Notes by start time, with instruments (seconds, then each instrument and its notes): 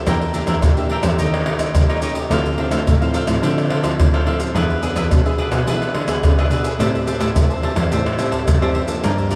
0.06 cello E2, nylon-string guitar E3 A#3 D4 G4, cavaquinho D4 A#4 E5 G5, pandeiro, tamborim, maracas, surdo
0.21 pandeiro, maracas, surdo
0.33 nylon-string guitar A#3 D4 G4, cavaquinho D4 A#4 E5 G5, pandeiro, maracas
0.47 cello E2, cavaquinho D4 A#4 E5 G5, pandeiro, tamborim, maracas, surdo
0.62 cello A#2, nylon-string guitar E3, pandeiro, tamborim, maracas, surdo
0.77 nylon-string guitar A#3 D4 G4, cavaquinho A#4 E5 G5, pandeiro, maracas
0.89 cavaquinho D4 A#4 E5 G5, pandeiro, surdo
1.03 cello E2, nylon-string guitar A3 C#4 G4, cavaquinho A#4 E5 G5, pandeiro, tamborim, maracas, surdo
1.18 cello D#2, nylon-string guitar D#3, cavaquinho D#4 G4 C#5 D#5, pandeiro, maracas, surdo
1.34 pandeiro, tamborim, maracas
1.46 cavaquinho D#4 G4 C#5 D#5, pandeiro, tamborim
1.59 nylon-string guitar A3 C#4 G4, cavaquinho G4 C#5 D#5, pandeiro, tamborim, maracas, surdo
1.75 cello D#2, nylon-string guitar A#2, pandeiro, tamborim, maracas, surdo
1.89 cavaquinho D#4 G4 C#5 D#5, pandeiro, tamborim, maracas
2.02 nylon-string guitar A3 C#4 G4, cavaquinho D#4 G4 C#5 D#5, pandeiro, maracas
2.15 cavaquinho G4 C#5 D#5, pandeiro, maracas
2.30 cello D2, nylon-string guitar D3 F3 C4 E4, cavaquinho D4 A4 C5 F5, pandeiro, tamborim, maracas, surdo
2.45 pandeiro, maracas, surdo
2.58 nylon-string guitar F3 C4 E4, cavaquinho D4 A4 C5 F5, pandeiro
2.71 cello D2, cavaquinho D4 A4 C5 F5, pandeiro, tamborim, maracas, surdo
2.87 cello A2, nylon-string guitar A2, pandeiro, tamborim, maracas, surdo
3.01 nylon-string guitar F3 C4 E4, cavaquinho A4 C5 F5, pandeiro, maracas
3.14 cavaquinho D4 A4 C5 F5, pandeiro, maracas
3.27 cello A2, nylon-string guitar F3 C4 E4, cavaquinho A4 C5 F5, pandeiro, tamborim, maracas, surdo
3.42 nylon-string guitar D3 F3 C4 E4, cello D3, cavaquinho D4 A4 C5 F5, pandeiro, maracas, surdo
3.58 pandeiro, tamborim, maracas
3.70 cavaquinho D4 A4 C5 F5, pandeiro, tamborim
3.83 nylon-string guitar F3 C4 E4, cavaquinho A4 C5 F5, pandeiro, tamborim, maracas, surdo
3.99 cello D2, nylon-string guitar A2, pandeiro, tamborim, maracas, surdo
4.13 cavaquinho D4 A4 C5 F5, pandeiro, tamborim, maracas
4.26 nylon-string guitar F3 C4 E4, cavaquinho D4 A4 C5 F5, pandeiro
4.39 cavaquinho A4 C5 F5, pandeiro, maracas
4.55 cello E2, nylon-string guitar E3 B3 D4 G#4, cavaquinho D4 G#4 B4 E5, pandeiro, tamborim, maracas, surdo
4.70 pandeiro, maracas, surdo
4.82 nylon-string guitar B3 D4 G#4, cavaquinho D4 G#4 B4 E5, pandeiro, maracas
4.95 cello E2, cavaquinho D4 G#4 B4 E5, pandeiro, tamborim, maracas, surdo
5.11 nylon-string guitar B2, cello B2, pandeiro, tamborim, maracas, surdo
5.25 nylon-string guitar B3 D4 G#4, cavaquinho G#4 B4 E5, pandeiro, maracas
5.38 cavaquinho D4 G#4 B4 E5, pandeiro
5.52 cello B2, nylon-string guitar B3 D4 G#4, cavaquinho G#4 B4 E5, pandeiro, tamborim, maracas, surdo
5.66 cello E3, nylon-string guitar E3 B3 D4 G#4, cavaquinho D4 G#4 B4 E5, pandeiro, maracas, surdo
5.82 pandeiro, tamborim, maracas
5.94 cello D3, cavaquinho D4 G#4 B4 E5, pandeiro, tamborim
6.07 nylon-string guitar B3 D4 G#4, cavaquinho G#4 B4 E5, pandeiro, tamborim, maracas, surdo
6.23 nylon-string guitar B2, cello C#3, pandeiro, tamborim, maracas, surdo
6.38 cavaquinho D4 G#4 B4 E5, pandeiro, tamborim, maracas
6.50 cello B2, nylon-string guitar B3 D4 G#4, cavaquinho D4 G#4 B4 E5, pandeiro, maracas
6.63 cavaquinho G#4 B4 E5, pandeiro, maracas
6.79 cello A2, nylon-string guitar A2 G3 C4 E4, cavaquinho G4 C5 E5 A5, pandeiro, tamborim, maracas, surdo
6.95 pandeiro, maracas, surdo
7.06 cavaquinho G4 C5 E5 A5, pandeiro, maracas
7.20 cello A2, cavaquinho G4 C5 E5 A5, pandeiro, tamborim, maracas, surdo
7.35 cello E2, nylon-string guitar E3 G3 C4 E4, pandeiro, tamborim, maracas, surdo
7.50 cavaquinho C5 E5 A5, pandeiro, maracas
7.62 nylon-string guitar G3 C4 E4, cavaquinho G4 C5 E5 A5, pandeiro
7.76 cello E2, nylon-string guitar G3 C4 E4, cavaquinho C5 E5 A5, pandeiro, tamborim, maracas, surdo
7.92 nylon-string guitar A2, cello A2, cavaquinho G4 C5 E5 A5, pandeiro, maracas, surdo
8.06 pandeiro, tamborim, maracas
8.18 nylon-string guitar G3 C4 E4, cavaquinho G4 C5 E5 A5, pandeiro, tamborim, maracas
8.32 cavaquinho C5 E5 A5, pandeiro, tamborim, maracas, surdo
8.48 cello F#2, nylon-string guitar E3, pandeiro, tamborim, maracas, surdo
8.62 nylon-string guitar G3 C4 E4, cavaquinho G4 C5 E5 A5, pandeiro, tamborim, maracas
8.74 cavaquinho G4 C5 E5 A5, pandeiro
8.87 nylon-string guitar F3 A#3 D4, cavaquinho C5 E5 A5, pandeiro, maracas
9.03 nylon-string guitar G2, cello G2, cavaquinho F4 A#4 D5 G5, pandeiro, tamborim, maracas, surdo
9.18 pandeiro, maracas, surdo
9.30 nylon-string guitar F3 A#3 D4, cavaquinho F4 A#4 D5, pandeiro, maracas